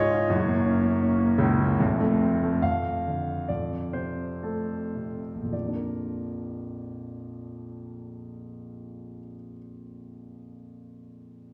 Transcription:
0.00 0.26 C#2 medium
0.00 0.27 G#2 medium
0.00 0.26 C#3 medium
0.00 0.27 G#3 medium
0.00 0.14 F4 medium
0.00 0.32 G#4 medium
0.00 1.73 C#5 loud
0.00 0.32 D#5 loud
0.00 0.32 F5 loud
0.14 0.30 F4 medium
0.30 1.76 F#1 medium
0.30 1.76 F#2 medium
0.48 0.82 A#3 medium
0.65 1.00 C#4 medium
0.83 1.17 A#3 medium
1.01 1.77 C#4 medium
1.19 1.58 A#3 medium
1.38 1.76 C#2 medium
1.38 1.78 C#3 medium
1.59 1.79 A#3 medium
1.80 2.59 F1 medium
1.80 2.61 F2 medium
2.00 2.41 A3 medium
2.21 2.62 C4 medium
2.42 2.63 A3 medium
2.62 3.47 F2 soft
2.62 3.51 F5 medium
3.07 3.49 D3 soft
3.48 5.42 F2 soft
3.48 3.96 D5 medium
3.93 4.94 C3 soft
3.93 4.44 C5 medium
4.43 5.51 A3 soft
4.43 5.20 A4 soft
4.95 5.52 C3 soft
5.35 9.18 A#1 soft
5.43 9.26 F2 soft
5.52 9.34 F3 soft
5.52 9.36 D5 soft
5.60 9.43 A#3 soft
5.68 9.51 D4 soft
5.75 9.58 A#4 soft

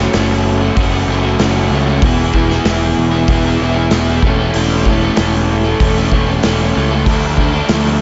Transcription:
0.00 0.12 A3 medium
0.00 0.14 C#4 medium
0.00 0.17 F#4 medium
0.13 0.70 F#1 medium
0.13 0.75 A3 medium
0.13 0.63 C#4 medium
0.13 snare loud
0.13 open hi-hat medium
0.17 0.60 F#4 medium
0.61 0.77 C#4 medium
0.61 0.80 F#4 medium
0.76 1.04 F#1 loud
0.76 1.07 A3 medium
0.76 0.94 C#4 medium
0.76 0.91 F#4 medium
0.76 kick loud
0.76 open hi-hat medium
0.92 1.08 C#4 medium
0.92 1.11 F#4 medium
1.07 1.35 F#1 medium
1.07 1.38 A3 medium
1.07 1.25 C#4 medium
1.12 1.23 F#4 medium
1.23 1.40 C#4 medium
1.23 1.42 F#4 medium
1.39 1.67 F#1 medium
1.39 1.70 A3 medium
1.39 1.72 C#4 loud
1.39 1.75 F#4 loud
1.39 snare loud
1.39 open hi-hat medium
1.70 1.98 C#2 medium
1.70 2.01 A3 medium
1.70 1.89 C#4 medium
1.75 1.86 F#4 medium
1.86 2.03 C#4 medium
1.86 2.05 F#4 medium
2.02 2.58 E1 medium
2.02 2.33 E3 medium
2.02 2.34 B3 medium
2.02 2.36 E4 medium
2.02 2.36 G#4 loud
2.02 kick loud
2.02 open hi-hat medium
2.34 2.65 E3 medium
2.34 2.52 B3 medium
2.34 2.51 E4 medium
2.34 2.49 G#4 medium
2.34 kick medium
2.50 2.65 B3 medium
2.50 2.67 E4 medium
2.50 2.67 G#4 medium
2.50 snare soft
2.65 2.93 E1 medium
2.65 3.27 E3 medium
2.65 3.14 B3 medium
2.65 3.12 E4 medium
2.65 3.10 G#4 medium
2.65 snare loud
2.65 open hi-hat medium
2.97 3.25 E1 medium
3.11 3.28 B3 medium
3.11 3.29 E4 medium
3.11 3.30 G#4 medium
3.28 3.56 E1 medium
3.28 3.59 E3 medium
3.28 3.46 B3 medium
3.28 3.44 E4 medium
3.28 3.43 G#4 medium
3.28 kick loud
3.28 open hi-hat medium
3.44 3.60 B3 medium
3.44 3.61 E4 medium
3.44 3.62 G#4 medium
3.60 3.88 E1 medium
3.60 3.90 E3 medium
3.60 3.77 B3 medium
3.60 3.76 E4 medium
3.60 3.74 G#4 medium
3.75 3.92 B3 medium
3.75 3.93 E4 medium
3.75 3.93 G#4 medium
3.91 4.19 E1 medium
3.91 4.21 E3 medium
3.91 4.22 B3 medium
3.91 4.22 E4 loud
3.91 4.23 G#4 loud
3.91 snare loud
3.91 open hi-hat medium
4.22 4.50 E1 medium
4.22 4.53 E3 medium
4.22 4.42 A3 medium
4.22 4.40 C#4 medium
4.22 kick loud
4.27 4.38 A4 loud
4.39 4.55 A3 medium
4.39 4.55 C#4 medium
4.39 4.57 A4 medium
4.54 5.09 E1 medium
4.54 4.84 E3 medium
4.54 4.86 A3 medium
4.54 4.87 C#4 loud
4.54 open hi-hat medium
4.58 4.89 A4 loud
4.85 5.15 E3 medium
4.85 5.04 A3 medium
4.85 5.02 C#4 medium
4.85 5.00 A4 medium
4.85 kick medium
5.01 5.17 A3 medium
5.01 5.17 C#4 medium
5.01 5.20 A4 medium
5.16 5.73 E1 medium
5.16 5.79 E3 medium
5.16 5.67 A3 medium
5.16 5.65 C#4 loud
5.16 snare loud
5.16 open hi-hat medium
5.20 5.64 A4 loud
5.64 5.80 A3 medium
5.64 5.80 C#4 medium
5.64 5.83 A4 medium
5.80 6.08 E1 medium
5.80 6.10 E3 medium
5.80 5.98 A3 medium
5.80 5.96 C#4 medium
5.80 5.95 A4 medium
5.80 kick loud
5.80 open hi-hat medium
5.95 6.13 A3 medium
5.95 6.13 C#4 medium
5.95 6.14 A4 medium
6.11 6.39 E1 medium
6.11 6.42 E3 medium
6.11 6.30 A3 medium
6.11 6.27 C#4 medium
6.11 6.26 A4 medium
6.11 kick medium
6.26 6.44 A3 medium
6.26 6.44 C#4 medium
6.26 6.46 A4 medium
6.43 6.71 E1 medium
6.43 6.73 E3 medium
6.43 6.75 A3 medium
6.43 6.75 C#4 loud
6.43 6.77 A4 loud
6.43 snare loud
6.43 open hi-hat medium
6.74 7.03 C#2 medium
6.74 7.04 E3 medium
6.74 6.94 A3 medium
6.74 6.91 C#4 medium
6.74 6.90 A4 medium
6.91 7.07 A3 medium
6.91 7.05 C#4 medium
6.91 7.09 A4 medium
7.06 7.61 D2 medium
7.06 7.36 F3 medium
7.06 7.38 A3 medium
7.06 7.39 D4 medium
7.06 7.40 A4 loud
7.06 kick loud
7.06 open hi-hat medium
7.37 7.68 F3 medium
7.37 7.56 A3 medium
7.37 7.54 D4 medium
7.37 7.52 A4 medium
7.37 kick medium
7.52 7.70 D4 medium
7.52 7.72 A4 medium
7.56 7.69 A3 medium
7.69 7.96 D2 medium
7.69 8.01 F3 medium
7.69 8.01 A3 medium
7.69 8.01 D4 medium
7.69 8.01 A4 medium
7.69 snare loud
7.69 open hi-hat medium

